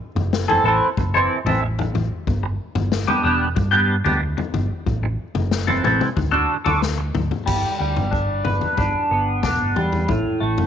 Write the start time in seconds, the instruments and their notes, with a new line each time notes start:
0.15 picked electric bass F#1, floor tom
0.33 snare
0.48 clean electric guitar E3 C4 E4 A4, floor tom
0.64 picked electric bass A1, clean electric guitar E3 C4 E4 A4
0.97 picked electric bass F#1, muted clean electric guitar stroke, kick, floor tom
1.14 clean electric guitar E3 C4 E4 A4
1.45 picked electric bass A1, clean electric guitar E3 C4 E4 A4, floor tom
1.63 muted clean electric guitar stroke
1.79 muted clean electric guitar stroke, floor tom
1.94 picked electric bass A1, floor tom
2.27 picked electric bass G1, kick, floor tom
2.43 muted clean electric guitar stroke
2.75 picked electric bass G1, floor tom
2.92 snare
3.07 clean electric guitar G3 B3 D4 G4, floor tom
3.23 picked electric bass E1, clean electric guitar G3 B3 D4 G4
3.55 picked electric bass G2, muted clean electric guitar stroke, kick, floor tom
3.71 clean electric guitar G3 B3 D4 G4
4.04 picked electric bass D2, clean electric guitar G3 B3 D4 G4, floor tom
4.21 muted clean electric guitar stroke
4.37 muted clean electric guitar stroke, floor tom
4.54 picked electric bass G1, floor tom
4.86 picked electric bass A1, kick, floor tom
5.03 muted clean electric guitar stroke
5.35 picked electric bass F#1, floor tom
5.51 snare
5.67 clean electric guitar E3 C4 E4 A4, floor tom
5.84 picked electric bass A1, clean electric guitar E3 C4 E4 A4, mid tom
6.01 mid tom
6.16 picked electric bass D2, muted clean electric guitar stroke, kick, floor tom
6.31 clean electric guitar D3 D4 F#4 A4
6.65 picked electric bass D2, clean electric guitar D3 D4 F#4 A4, floor tom
6.81 muted clean electric guitar stroke, snare
6.98 muted clean electric guitar stroke
7.15 picked electric bass D2, mid tom
7.31 floor tom
7.46 picked electric bass G1, clean electric guitar G3, kick, floor tom, crash
7.79 picked electric bass D2, clean electric guitar G3
7.96 picked electric bass G1, floor tom
8.11 clean electric guitar D4, kick
8.45 picked electric bass G1, clean electric guitar B4, floor tom
8.61 floor tom
8.77 picked electric bass G1, clean electric guitar D4, kick, floor tom
9.11 picked electric bass G1, clean electric guitar B3
9.43 picked electric bass E1, clean electric guitar D4, kick, snare, floor tom, mid tom
9.61 picked electric bass G1
9.76 picked electric bass E2, clean electric guitar G3, floor tom
9.92 floor tom
10.09 picked electric bass A1, clean electric guitar A2, kick, floor tom
10.40 picked electric bass A1, clean electric guitar A3
10.58 picked electric bass F#1, floor tom